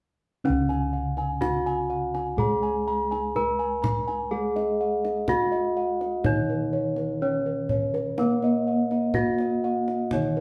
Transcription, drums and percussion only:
0.45 kendang high
0.70 kendang slap
1.17 kendang slap
1.42 kendang high, kendang low
1.67 kendang slap
2.15 kendang slap
2.38 kendang low
3.12 kendang slap
3.36 kendang low
3.84 kendang high, kendang low
4.09 kendang slap
4.56 kendang slap
5.05 kendang slap
5.28 kendang high, kendang low
5.53 kendang slap
6.01 kendang slap
6.24 kendang high, kendang low
6.96 kendang slap
7.69 kendang low
7.94 kendang slap
8.18 kendang high
8.42 kendang slap
8.91 kendang slap
9.14 kendang high, kendang low
9.38 kendang slap
9.88 kendang slap
10.11 kendang low

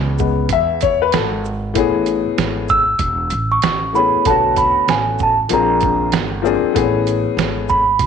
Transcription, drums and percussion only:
0.18 kick, shaker
0.49 kick, closed hi-hat
0.81 kick, closed hi-hat, shaker
1.12 snare, closed hi-hat
1.45 shaker
1.75 kick, closed hi-hat
2.06 closed hi-hat, shaker
2.38 snare, closed hi-hat
2.68 kick, shaker
2.99 kick, closed hi-hat
3.30 closed hi-hat, shaker
3.62 snare, closed hi-hat
3.95 shaker
4.25 kick, closed hi-hat
4.56 kick, closed hi-hat, shaker
4.88 snare, closed hi-hat
5.19 kick, shaker
5.49 closed hi-hat
5.81 kick, closed hi-hat, shaker
6.12 snare, closed hi-hat
6.45 shaker
6.76 kick, closed hi-hat
7.07 closed hi-hat, shaker
7.38 snare, closed hi-hat
7.69 kick, shaker
7.99 kick, closed hi-hat

